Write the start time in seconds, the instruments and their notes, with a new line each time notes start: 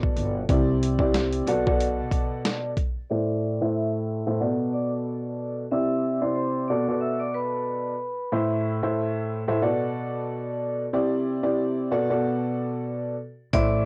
Already playing: grand piano B2 B3 F#4 A4 D5
0.03 kick
0.16 upright bass G1, closed hi-hat
0.49 upright bass C2, grand piano C3 C4 E4 G4 D5, kick, closed hi-hat
0.83 closed hi-hat
0.99 grand piano C3 C4 E4 G4 D5, kick
1.14 snare, closed hi-hat
1.33 closed hi-hat
1.47 upright bass B1, grand piano B2 B3 F#4 A4 D5, closed hi-hat
1.66 grand piano B2 B3 F#4 A4 D5, kick
1.80 closed hi-hat
2.11 kick, closed hi-hat
2.45 snare, closed hi-hat
2.77 kick, closed hi-hat
3.10 grand piano A2 A3 E4 C5 E5, vibraphone D5 D6
3.61 grand piano A2 A3 E4 C5 E5, vibraphone E5 E6
4.27 grand piano A2 A3 E4 C5 E5
4.41 grand piano B2 B3 F#4 A4 D5
4.73 vibraphone D5 D6
5.71 grand piano C3 C4 E4 G4 D5, vibraphone E5 E6
6.21 grand piano C3 C4 E4 G4 D5, vibraphone C5 C6
6.36 vibraphone C5 C6
6.68 grand piano B2 B3 F#4 A4 D5, vibraphone D5 D6
6.88 grand piano B2 B3 F#4 A4 D5
7.01 vibraphone E5 E6
7.19 vibraphone D5 D6
7.34 vibraphone B4 B5
8.32 grand piano A2 A3 E4 C5 E5
8.83 grand piano A2 A3 E4 C5 E5
9.48 grand piano A2 A3 E4 C5 E5
9.62 grand piano B2 B3 F#4 A4 D5
10.93 grand piano C3 C4 E4 G4 D5
11.43 grand piano C3 C4 E4 G4 D5
11.91 grand piano B2 B3 F#4 A4 D5
12.10 grand piano B2 B3 F#4 A4 D5
13.53 upright bass A1, grand piano A2 A3 E4 C5 E5, vibraphone D5 D6, kick, closed hi-hat